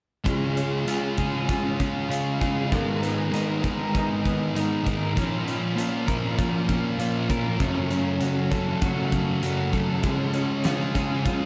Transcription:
0.25 clean electric guitar C#3 G#3 C#4 F4 G#4, kick, closed hi-hat
0.57 clean electric guitar C#4, closed hi-hat
0.86 distorted electric guitar C#3, clean electric guitar G#3 C#4 F4, closed hi-hat
0.90 clean electric guitar F4 G#4
1.18 distorted electric guitar G#3, clean electric guitar C#4 F4 G#4, kick, closed hi-hat
1.48 clean electric guitar C#3 G#3 C#4 F4 G#4, kick, closed hi-hat
1.80 clean electric guitar C#4, kick, closed hi-hat
2.09 distorted electric guitar C#3, clean electric guitar G#3 C#4 F4 G#4, closed hi-hat
2.39 distorted electric guitar G#3 C#4, clean electric guitar G#4, kick, closed hi-hat
2.70 clean electric guitar G#2 D#3 G#3 B3 D#4 A#4, kick, closed hi-hat
3.02 clean electric guitar B3, closed hi-hat
3.32 distorted electric guitar G#2 D#3, clean electric guitar G#3 B3 D#4, closed hi-hat
3.36 clean electric guitar A#4
3.63 distorted electric guitar D#3, clean electric guitar G#3 B3 D#4 A#4, kick, closed hi-hat
3.94 clean electric guitar G#2 D#3 G#3 B3 D#4 A#4, kick, closed hi-hat
4.25 clean electric guitar B3, kick, closed hi-hat
4.54 distorted electric guitar G#2 D#3, clean electric guitar G#3 B3 D#4, closed hi-hat
4.59 clean electric guitar A#4
4.83 distorted electric guitar D#3 G#3, clean electric guitar A#4, kick, closed hi-hat
5.16 clean electric guitar A#2 F3 A#3 C#4, kick, closed hi-hat
5.48 clean electric guitar C#4, closed hi-hat
5.75 clean electric guitar A#2 F3 A#3 C#4 F4, closed hi-hat
6.06 clean electric guitar A#3 C#4 A#4, kick, closed hi-hat
6.10 clean electric guitar F3
6.36 clean electric guitar A#2 F3 A#3 F4, kick, closed hi-hat
6.40 clean electric guitar C#4
6.68 clean electric guitar C#4, kick, closed hi-hat
6.97 clean electric guitar A#2 F3 A#3 C#4 F4, closed hi-hat
7.29 distorted electric guitar F3 A#3, clean electric guitar A#4, kick, closed hi-hat
7.58 clean electric guitar F#2 C#3 F#3 A3 C#4, kick, closed hi-hat
7.91 clean electric guitar C#4, closed hi-hat
8.20 distorted electric guitar F#2, clean electric guitar C#3 F#3 A3 C#4 F#4, closed hi-hat
8.51 distorted electric guitar C#3, clean electric guitar F#3 A3 C#4 A4, kick, closed hi-hat
8.82 clean electric guitar F#2 C#3 F#3 A3 C#4 F#4, kick, closed hi-hat
9.12 clean electric guitar C#4, kick, closed hi-hat
9.41 distorted electric guitar F#2, clean electric guitar C#3 F#3 A3 F#4, closed hi-hat
9.46 clean electric guitar C#4
9.73 distorted electric guitar C#3 F#3, clean electric guitar A4, kick, closed hi-hat
10.03 clean electric guitar C#3 F3 G#3 C#4, kick, closed hi-hat
10.34 clean electric guitar C#4, closed hi-hat
10.64 clean electric guitar C#3 F3 G#3 C#4 F4, snare, closed hi-hat
10.94 clean electric guitar F3 G#3 C#4 G#4, kick, closed hi-hat
11.24 clean electric guitar C#3 F3 G#3 F4, kick, closed hi-hat
11.28 clean electric guitar C#4

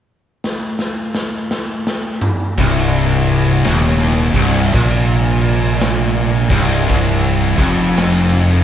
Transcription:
0.44 snare
0.79 snare
1.15 snare
1.51 snare
1.87 snare
2.21 mid tom
2.57 fingered electric bass C1, distorted electric guitar C2, tonewheel organ C3 G3 D4, kick, crash
3.25 crash
3.65 fingered electric bass D#1, distorted electric guitar D#2, snare, crash
4.33 fingered electric bass C1, distorted electric guitar C2, kick, crash
4.73 fingered electric bass A#1, distorted electric guitar A#2, kick, crash
5.41 crash
5.81 snare, crash
6.50 fingered electric bass C1, distorted electric guitar C2, kick, crash
6.89 tonewheel organ F3, kick, crash
7.57 fingered electric bass F1, distorted electric guitar F2, kick, crash
7.97 snare, crash

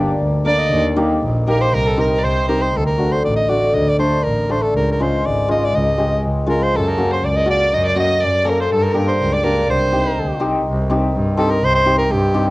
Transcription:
0.20 double bass D2
0.45 hammered dulcimer A#3 D4 A#4, violin D5, soprano saxophone D5
0.59 soprano saxophone D#5
0.70 double bass D#2
0.97 hammered dulcimer A#3 D#4 G4
1.22 double bass A#1
1.47 hammered dulcimer A#3 D#4 G4, violin A#4, soprano saxophone A#4
1.61 soprano saxophone C5, violin C5
1.73 double bass C2, violin A#4, soprano saxophone A#4
1.87 soprano saxophone A4
1.97 hammered dulcimer C4 D#4 G4, violin A#4, soprano saxophone A#4
2.18 violin D5
2.23 double bass C2, soprano saxophone C5, violin C5
2.48 hammered dulcimer C4 D#4 G4, soprano saxophone A#4
2.62 soprano saxophone C5
2.73 double bass D2
2.77 soprano saxophone A4
2.86 soprano saxophone A#4
2.98 hammered dulcimer A3 D4 F#4
3.12 soprano saxophone C5
3.23 double bass A1, soprano saxophone D5
3.36 soprano saxophone D#5
3.49 hammered dulcimer A3 D4 F#4, soprano saxophone D5
3.74 double bass D2, soprano saxophone D#5
3.89 soprano saxophone D5
3.99 hammered dulcimer A3 D4 A4, soprano saxophone C5
4.23 double bass A1, soprano saxophone A#4
4.49 hammered dulcimer A3 D4 A4, soprano saxophone C5
4.62 soprano saxophone A4
4.74 double bass C#2, soprano saxophone A#4
4.91 soprano saxophone A#4
5.00 hammered dulcimer G#3 C#4 F4, soprano saxophone C5
5.23 double bass G#1, soprano saxophone D5
5.48 hammered dulcimer G#3 C#4 F4, soprano saxophone D#5
5.65 soprano saxophone D5
5.74 double bass C#2, soprano saxophone D#5
5.98 hammered dulcimer G#3 C#4 G4
6.24 double bass C#2
6.46 hammered dulcimer G#3 C#4 F4, soprano saxophone A#4
6.63 soprano saxophone C5
6.74 double bass F#2, violin A4, soprano saxophone A4
6.89 soprano saxophone A#4
6.98 hammered dulcimer A#3 C#4 F#4
7.11 violin C5, soprano saxophone C5
7.22 double bass C#2, soprano saxophone D5, violin D5
7.36 soprano saxophone D#5
7.46 hammered dulcimer A#3 C#4 F#4, violin D5
7.50 soprano saxophone D5
7.74 double bass F#2, soprano saxophone D#5, violin D#5
7.86 violin D5, soprano saxophone D5
7.95 hammered dulcimer A#3 C#4 F#4, violin D#5
8.00 soprano saxophone D#5
8.20 double bass F#2, violin D5
8.24 soprano saxophone D5
8.44 hammered dulcimer A#3 C#4 A4, violin A#4
8.49 soprano saxophone A#4
8.60 violin C5, soprano saxophone C5
8.70 double bass G2, violin A4, soprano saxophone A4
8.83 soprano saxophone A#4, violin A#4
8.94 hammered dulcimer A#3 D4 G4
9.07 soprano saxophone C5
9.21 double bass C#2
9.33 soprano saxophone D5, violin D5
9.43 hammered dulcimer A#3 D4 G4, soprano saxophone A#4
9.68 double bass C2, violin C5, soprano saxophone C5
9.92 hammered dulcimer C4 D#4 G4
10.17 double bass D2
10.40 double bass C2, hammered dulcimer C4 D#4 G4
10.64 double bass C2
10.90 hammered dulcimer C4 D#4 G4
11.14 double bass G2
11.37 hammered dulcimer C4 D#4 G4, soprano saxophone A4
11.51 soprano saxophone A#4
11.62 double bass C2, soprano saxophone C5
11.75 soprano saxophone C5
11.86 hammered dulcimer C4 D#4 G4
11.98 soprano saxophone A#4
12.10 double bass G2, soprano saxophone G4
12.34 hammered dulcimer C4 D#4 G4

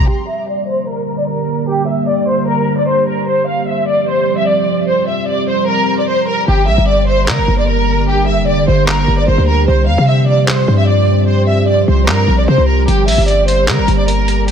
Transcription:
0.08 ambient pad D3 G3 A#3 G4, violin section G4
0.28 violin section E5
0.48 violin section D5
0.68 violin section C5
0.88 violin section A#4
1.18 violin section D5
1.28 violin section A#4
1.68 violin section G4
1.88 violin section E5
2.08 violin section D5
2.28 violin section C5
2.48 violin section A#4
2.78 violin section D5
2.88 violin section C5
3.08 violin section A#4
3.28 ambient pad F3 G3 C4, violin section C5
3.47 violin section F5
3.68 violin section E5
3.88 violin section D5
4.08 violin section C5
4.38 violin section E5
4.48 violin section D5
4.88 violin section C5
5.08 violin section E5
5.28 violin section D5
5.49 violin section C5
5.68 violin section A#4
5.99 violin section D5
6.08 violin section C5
6.28 violin section A#4
6.48 808-style bass G1, ambient pad D3 G3 A#3 G4, violin section G4
6.68 808-style bass A#1, violin section E5
6.78 808-style bass G1
6.88 violin section D5
7.08 violin section C5
7.28 808-style bass D3, violin section A#4, clap
7.38 808-style bass G1
7.48 808-style bass G1
7.58 violin section D5
7.68 violin section A#4
8.08 violin section G4
8.27 violin section E5
8.38 808-style bass F1
8.48 violin section D5
8.68 808-style bass G1, violin section C5
8.88 violin section A#4, clap
9.08 808-style bass G1
9.18 violin section D5
9.28 808-style bass G1, violin section C5
9.38 808-style bass D2
9.48 violin section A#4
9.68 808-style bass C2, ambient pad F3 C4, violin section C5
9.87 808-style bass E2, violin section F5
9.98 808-style bass C3
10.08 violin section E5
10.28 violin section D5
10.48 violin section C5, clap
10.68 808-style bass G2
10.78 violin section E5
10.88 violin section D5
11.28 violin section C5
11.48 violin section E5
11.68 violin section D5
11.88 808-style bass C2, violin section C5
12.08 808-style bass G2, violin section A#4, clap
12.28 808-style bass A#1
12.39 violin section D5
12.48 808-style bass C3, violin section C5
12.58 808-style bass C2
12.68 violin section A#4
12.88 808-style bass G1, ambient pad D3 A#3, violin section G4, closed hi-hat
13.08 808-style bass A#1, violin section E5, open hi-hat
13.18 808-style bass G1
13.28 violin section D5, closed hi-hat
13.48 violin section C5, closed hi-hat
13.68 808-style bass D3, violin section A#4, clap, closed hi-hat
13.78 808-style bass G1
13.88 808-style bass G1, closed hi-hat
13.98 violin section D5
14.08 violin section A#4, closed hi-hat
14.28 closed hi-hat
14.48 violin section G4, closed hi-hat

